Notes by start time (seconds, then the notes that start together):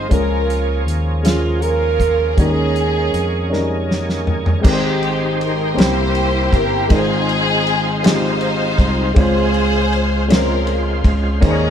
Already playing: G#3 D#4 F4 G#4 C5
0.09 C#2 C#3 F3 G#3 A#3 C#4 F4 G#4 A#4, kick, closed hi-hat
0.13 A#4
0.50 closed hi-hat
0.87 D#2, closed hi-hat
1.23 G#3 C#4 F4 G#4, snare, closed hi-hat
1.59 F4 A#4, closed hi-hat
2.00 kick, closed hi-hat
2.33 G3 G#4
2.37 D#2 D#3 A#3 C#4 D#4 G#4 A#4, kick, closed hi-hat
2.43 G#3
2.76 closed hi-hat
3.13 F2, closed hi-hat
3.49 G3 C#4 D#4
3.53 G#3 A#4, snare
3.91 snare
4.09 snare
4.27 floor tom
4.46 floor tom
4.61 G#1 G#2 G#3 C4 D#4 G4 A#4, kick, crash
4.66 G4 A#4
4.70 C5
5.03 ride
5.41 A#4, ride
5.74 C2 C3 A#3 C4 C#4 E4 G4 B4 C5
5.78 E4 G4 C5, snare, ride
5.83 E4 C5
6.15 ride
6.53 G1 A#4, kick, ride
6.88 G#1 G#2 G#3 C4 D#4 F4 G#4 A#4 C5, kick, ride
6.98 C5
7.29 ride
7.67 ride
8.03 G#3 C4 D#4 F4 G4 C5, snare, ride
8.41 ride
8.78 C2, kick, ride
9.14 C#2 C#3 G#3 C4 C#4 F4 B4 C5, kick, ride
9.18 G#4
9.23 C5
9.54 ride
9.93 ride
10.28 G#3 C4 C#4 F4 A#4 C5, snare, ride
10.67 ride
11.04 C#2, kick, ride
11.40 D#2 D#3 G#3 A#3 C#4 D#4 G#4 A#4 C5, kick, ride
11.51 C#5